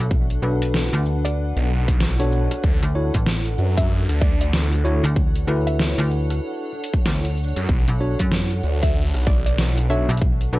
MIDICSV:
0, 0, Header, 1, 7, 480
1, 0, Start_track
1, 0, Key_signature, 2, "minor"
1, 0, Tempo, 631579
1, 83, Time_signature, 4, 2, 24, 8
1, 8050, End_track
2, 0, Start_track
2, 0, Title_t, "Synth pluck"
2, 0, Program_c, 0, 84
2, 948, Note_on_c, 0, 74, 96
2, 1610, Note_off_c, 0, 74, 0
2, 2868, Note_on_c, 0, 76, 95
2, 3184, Note_off_c, 0, 76, 0
2, 3203, Note_on_c, 0, 74, 83
2, 3297, Note_off_c, 0, 74, 0
2, 3352, Note_on_c, 0, 74, 75
2, 3411, Note_off_c, 0, 74, 0
2, 4308, Note_on_c, 0, 76, 91
2, 4970, Note_off_c, 0, 76, 0
2, 6708, Note_on_c, 0, 76, 96
2, 7024, Note_off_c, 0, 76, 0
2, 7043, Note_on_c, 0, 74, 90
2, 7137, Note_off_c, 0, 74, 0
2, 7189, Note_on_c, 0, 74, 74
2, 7249, Note_off_c, 0, 74, 0
2, 7523, Note_on_c, 0, 76, 100
2, 7743, Note_off_c, 0, 76, 0
2, 8050, End_track
3, 0, Start_track
3, 0, Title_t, "Ambient pad"
3, 0, Program_c, 1, 92
3, 0, Note_on_c, 1, 62, 81
3, 0, Note_on_c, 1, 69, 75
3, 0, Note_on_c, 1, 71, 70
3, 0, Note_on_c, 1, 78, 84
3, 2767, Note_on_c, 1, 73, 85
3, 3561, Note_off_c, 1, 71, 0
3, 5835, Note_off_c, 1, 62, 0
3, 5844, Note_on_c, 1, 62, 74
3, 6630, Note_on_c, 1, 71, 93
3, 7400, Note_off_c, 1, 73, 0
3, 8050, Note_off_c, 1, 62, 0
3, 8050, Note_off_c, 1, 69, 0
3, 8050, Note_off_c, 1, 71, 0
3, 8050, Note_off_c, 1, 78, 0
3, 8050, End_track
4, 0, Start_track
4, 0, Title_t, "Tine electric piano"
4, 0, Program_c, 2, 4
4, 324, Note_on_c, 2, 62, 90
4, 324, Note_on_c, 2, 71, 95
4, 325, Note_on_c, 2, 66, 80
4, 325, Note_on_c, 2, 69, 79
4, 1261, Note_off_c, 2, 62, 0
4, 1261, Note_off_c, 2, 66, 0
4, 1261, Note_off_c, 2, 69, 0
4, 1261, Note_off_c, 2, 71, 0
4, 1669, Note_on_c, 2, 62, 84
4, 1670, Note_on_c, 2, 66, 81
4, 1670, Note_on_c, 2, 69, 81
4, 1670, Note_on_c, 2, 73, 96
4, 1992, Note_off_c, 2, 62, 0
4, 1992, Note_off_c, 2, 66, 0
4, 1992, Note_off_c, 2, 69, 0
4, 1992, Note_off_c, 2, 73, 0
4, 2244, Note_on_c, 2, 64, 80
4, 2244, Note_on_c, 2, 66, 72
4, 2244, Note_on_c, 2, 69, 71
4, 2244, Note_on_c, 2, 73, 86
4, 2375, Note_off_c, 2, 64, 0
4, 2375, Note_off_c, 2, 66, 0
4, 2375, Note_off_c, 2, 69, 0
4, 2375, Note_off_c, 2, 73, 0
4, 3684, Note_on_c, 2, 64, 91
4, 3684, Note_on_c, 2, 66, 91
4, 3684, Note_on_c, 2, 69, 86
4, 3684, Note_on_c, 2, 73, 107
4, 3815, Note_off_c, 2, 64, 0
4, 3815, Note_off_c, 2, 66, 0
4, 3815, Note_off_c, 2, 69, 0
4, 3815, Note_off_c, 2, 73, 0
4, 4163, Note_on_c, 2, 64, 92
4, 4163, Note_on_c, 2, 66, 80
4, 4163, Note_on_c, 2, 71, 99
4, 4164, Note_on_c, 2, 69, 81
4, 5101, Note_off_c, 2, 64, 0
4, 5101, Note_off_c, 2, 66, 0
4, 5101, Note_off_c, 2, 69, 0
4, 5101, Note_off_c, 2, 71, 0
4, 6084, Note_on_c, 2, 66, 73
4, 6085, Note_on_c, 2, 62, 78
4, 6085, Note_on_c, 2, 69, 68
4, 6085, Note_on_c, 2, 73, 86
4, 6215, Note_off_c, 2, 62, 0
4, 6215, Note_off_c, 2, 66, 0
4, 6215, Note_off_c, 2, 69, 0
4, 6215, Note_off_c, 2, 73, 0
4, 7524, Note_on_c, 2, 62, 89
4, 7524, Note_on_c, 2, 69, 84
4, 7524, Note_on_c, 2, 73, 106
4, 7525, Note_on_c, 2, 66, 84
4, 7655, Note_off_c, 2, 62, 0
4, 7655, Note_off_c, 2, 66, 0
4, 7655, Note_off_c, 2, 69, 0
4, 7655, Note_off_c, 2, 73, 0
4, 8004, Note_on_c, 2, 62, 88
4, 8004, Note_on_c, 2, 66, 79
4, 8004, Note_on_c, 2, 69, 75
4, 8004, Note_on_c, 2, 71, 99
4, 8050, Note_off_c, 2, 62, 0
4, 8050, Note_off_c, 2, 66, 0
4, 8050, Note_off_c, 2, 69, 0
4, 8050, Note_off_c, 2, 71, 0
4, 8050, End_track
5, 0, Start_track
5, 0, Title_t, "Detuned saw bass"
5, 0, Program_c, 3, 39
5, 1190, Note_on_c, 3, 35, 96
5, 1886, Note_off_c, 3, 35, 0
5, 2005, Note_on_c, 3, 38, 100
5, 2127, Note_off_c, 3, 38, 0
5, 2725, Note_on_c, 3, 42, 94
5, 3087, Note_off_c, 3, 42, 0
5, 3110, Note_on_c, 3, 38, 101
5, 3806, Note_off_c, 3, 38, 0
5, 5751, Note_on_c, 3, 42, 97
5, 5829, Note_off_c, 3, 42, 0
5, 5845, Note_on_c, 3, 35, 99
5, 5967, Note_off_c, 3, 35, 0
5, 6565, Note_on_c, 3, 38, 98
5, 6927, Note_off_c, 3, 38, 0
5, 6951, Note_on_c, 3, 35, 98
5, 7647, Note_off_c, 3, 35, 0
5, 8050, End_track
6, 0, Start_track
6, 0, Title_t, "FM bass"
6, 0, Program_c, 4, 39
6, 0, Note_on_c, 4, 35, 98
6, 308, Note_off_c, 4, 35, 0
6, 322, Note_on_c, 4, 35, 92
6, 685, Note_off_c, 4, 35, 0
6, 706, Note_on_c, 4, 38, 97
6, 1165, Note_off_c, 4, 38, 0
6, 2147, Note_on_c, 4, 38, 93
6, 2365, Note_off_c, 4, 38, 0
6, 2391, Note_on_c, 4, 33, 97
6, 2709, Note_off_c, 4, 33, 0
6, 3828, Note_on_c, 4, 38, 100
6, 4147, Note_off_c, 4, 38, 0
6, 4161, Note_on_c, 4, 38, 96
6, 4525, Note_off_c, 4, 38, 0
6, 4546, Note_on_c, 4, 38, 102
6, 4867, Note_off_c, 4, 38, 0
6, 5363, Note_on_c, 4, 38, 100
6, 5726, Note_off_c, 4, 38, 0
6, 5989, Note_on_c, 4, 35, 94
6, 6206, Note_off_c, 4, 35, 0
6, 6230, Note_on_c, 4, 42, 101
6, 6548, Note_off_c, 4, 42, 0
6, 7668, Note_on_c, 4, 35, 99
6, 7987, Note_off_c, 4, 35, 0
6, 8001, Note_on_c, 4, 35, 97
6, 8050, Note_off_c, 4, 35, 0
6, 8050, End_track
7, 0, Start_track
7, 0, Title_t, "Drums"
7, 83, Note_on_c, 9, 36, 121
7, 159, Note_off_c, 9, 36, 0
7, 230, Note_on_c, 9, 42, 54
7, 306, Note_off_c, 9, 42, 0
7, 471, Note_on_c, 9, 42, 71
7, 547, Note_off_c, 9, 42, 0
7, 563, Note_on_c, 9, 38, 117
7, 639, Note_off_c, 9, 38, 0
7, 712, Note_on_c, 9, 42, 38
7, 788, Note_off_c, 9, 42, 0
7, 805, Note_on_c, 9, 82, 59
7, 881, Note_off_c, 9, 82, 0
7, 952, Note_on_c, 9, 37, 41
7, 952, Note_on_c, 9, 42, 71
7, 1028, Note_off_c, 9, 37, 0
7, 1028, Note_off_c, 9, 42, 0
7, 1191, Note_on_c, 9, 42, 41
7, 1267, Note_off_c, 9, 42, 0
7, 1430, Note_on_c, 9, 36, 109
7, 1430, Note_on_c, 9, 42, 67
7, 1506, Note_off_c, 9, 36, 0
7, 1506, Note_off_c, 9, 42, 0
7, 1524, Note_on_c, 9, 38, 123
7, 1600, Note_off_c, 9, 38, 0
7, 1671, Note_on_c, 9, 42, 56
7, 1747, Note_off_c, 9, 42, 0
7, 1763, Note_on_c, 9, 82, 62
7, 1839, Note_off_c, 9, 82, 0
7, 1909, Note_on_c, 9, 37, 42
7, 1909, Note_on_c, 9, 42, 69
7, 1985, Note_off_c, 9, 37, 0
7, 1985, Note_off_c, 9, 42, 0
7, 2004, Note_on_c, 9, 36, 127
7, 2080, Note_off_c, 9, 36, 0
7, 2149, Note_on_c, 9, 42, 58
7, 2225, Note_off_c, 9, 42, 0
7, 2388, Note_on_c, 9, 42, 67
7, 2390, Note_on_c, 9, 36, 67
7, 2464, Note_off_c, 9, 42, 0
7, 2466, Note_off_c, 9, 36, 0
7, 2481, Note_on_c, 9, 38, 127
7, 2557, Note_off_c, 9, 38, 0
7, 2628, Note_on_c, 9, 42, 39
7, 2704, Note_off_c, 9, 42, 0
7, 2723, Note_on_c, 9, 82, 61
7, 2799, Note_off_c, 9, 82, 0
7, 2869, Note_on_c, 9, 42, 69
7, 2870, Note_on_c, 9, 36, 106
7, 2945, Note_off_c, 9, 42, 0
7, 2946, Note_off_c, 9, 36, 0
7, 3110, Note_on_c, 9, 37, 36
7, 3110, Note_on_c, 9, 42, 38
7, 3186, Note_off_c, 9, 37, 0
7, 3186, Note_off_c, 9, 42, 0
7, 3204, Note_on_c, 9, 36, 115
7, 3280, Note_off_c, 9, 36, 0
7, 3351, Note_on_c, 9, 42, 69
7, 3427, Note_off_c, 9, 42, 0
7, 3446, Note_on_c, 9, 38, 126
7, 3522, Note_off_c, 9, 38, 0
7, 3592, Note_on_c, 9, 42, 56
7, 3668, Note_off_c, 9, 42, 0
7, 3685, Note_on_c, 9, 82, 64
7, 3761, Note_off_c, 9, 82, 0
7, 3832, Note_on_c, 9, 42, 70
7, 3908, Note_off_c, 9, 42, 0
7, 3924, Note_on_c, 9, 36, 127
7, 4000, Note_off_c, 9, 36, 0
7, 4070, Note_on_c, 9, 42, 54
7, 4146, Note_off_c, 9, 42, 0
7, 4311, Note_on_c, 9, 42, 62
7, 4387, Note_off_c, 9, 42, 0
7, 4404, Note_on_c, 9, 38, 124
7, 4480, Note_off_c, 9, 38, 0
7, 4550, Note_on_c, 9, 42, 37
7, 4626, Note_off_c, 9, 42, 0
7, 4645, Note_on_c, 9, 82, 62
7, 4721, Note_off_c, 9, 82, 0
7, 4791, Note_on_c, 9, 37, 38
7, 4791, Note_on_c, 9, 42, 63
7, 4867, Note_off_c, 9, 37, 0
7, 4867, Note_off_c, 9, 42, 0
7, 5196, Note_on_c, 9, 42, 65
7, 5271, Note_on_c, 9, 36, 108
7, 5272, Note_off_c, 9, 42, 0
7, 5347, Note_off_c, 9, 36, 0
7, 5363, Note_on_c, 9, 38, 121
7, 5439, Note_off_c, 9, 38, 0
7, 5509, Note_on_c, 9, 42, 54
7, 5585, Note_off_c, 9, 42, 0
7, 5603, Note_on_c, 9, 82, 58
7, 5651, Note_off_c, 9, 82, 0
7, 5651, Note_on_c, 9, 82, 49
7, 5683, Note_off_c, 9, 82, 0
7, 5683, Note_on_c, 9, 82, 38
7, 5749, Note_off_c, 9, 82, 0
7, 5749, Note_on_c, 9, 37, 37
7, 5749, Note_on_c, 9, 42, 69
7, 5749, Note_on_c, 9, 82, 32
7, 5762, Note_off_c, 9, 82, 0
7, 5762, Note_on_c, 9, 82, 27
7, 5811, Note_off_c, 9, 82, 0
7, 5811, Note_on_c, 9, 82, 22
7, 5825, Note_off_c, 9, 37, 0
7, 5825, Note_off_c, 9, 42, 0
7, 5844, Note_on_c, 9, 36, 125
7, 5887, Note_off_c, 9, 82, 0
7, 5920, Note_off_c, 9, 36, 0
7, 5987, Note_on_c, 9, 42, 54
7, 6063, Note_off_c, 9, 42, 0
7, 6227, Note_on_c, 9, 42, 65
7, 6230, Note_on_c, 9, 36, 65
7, 6303, Note_off_c, 9, 42, 0
7, 6306, Note_off_c, 9, 36, 0
7, 6320, Note_on_c, 9, 38, 120
7, 6396, Note_off_c, 9, 38, 0
7, 6467, Note_on_c, 9, 42, 35
7, 6543, Note_off_c, 9, 42, 0
7, 6561, Note_on_c, 9, 82, 66
7, 6637, Note_off_c, 9, 82, 0
7, 6709, Note_on_c, 9, 42, 63
7, 6710, Note_on_c, 9, 36, 108
7, 6785, Note_off_c, 9, 42, 0
7, 6786, Note_off_c, 9, 36, 0
7, 6949, Note_on_c, 9, 37, 38
7, 6949, Note_on_c, 9, 42, 34
7, 6965, Note_off_c, 9, 42, 0
7, 6965, Note_on_c, 9, 42, 29
7, 6998, Note_off_c, 9, 42, 0
7, 6998, Note_on_c, 9, 42, 19
7, 7013, Note_off_c, 9, 42, 0
7, 7013, Note_on_c, 9, 42, 16
7, 7025, Note_off_c, 9, 37, 0
7, 7029, Note_off_c, 9, 42, 0
7, 7029, Note_on_c, 9, 42, 13
7, 7044, Note_on_c, 9, 36, 108
7, 7105, Note_off_c, 9, 42, 0
7, 7120, Note_off_c, 9, 36, 0
7, 7191, Note_on_c, 9, 42, 66
7, 7267, Note_off_c, 9, 42, 0
7, 7284, Note_on_c, 9, 38, 121
7, 7360, Note_off_c, 9, 38, 0
7, 7431, Note_on_c, 9, 42, 52
7, 7507, Note_off_c, 9, 42, 0
7, 7524, Note_on_c, 9, 82, 69
7, 7600, Note_off_c, 9, 82, 0
7, 7669, Note_on_c, 9, 37, 40
7, 7669, Note_on_c, 9, 42, 29
7, 7682, Note_off_c, 9, 42, 0
7, 7682, Note_on_c, 9, 42, 41
7, 7732, Note_off_c, 9, 42, 0
7, 7732, Note_on_c, 9, 42, 51
7, 7745, Note_off_c, 9, 37, 0
7, 7764, Note_on_c, 9, 36, 117
7, 7808, Note_off_c, 9, 42, 0
7, 7840, Note_off_c, 9, 36, 0
7, 7911, Note_on_c, 9, 42, 52
7, 7987, Note_off_c, 9, 42, 0
7, 8050, End_track
0, 0, End_of_file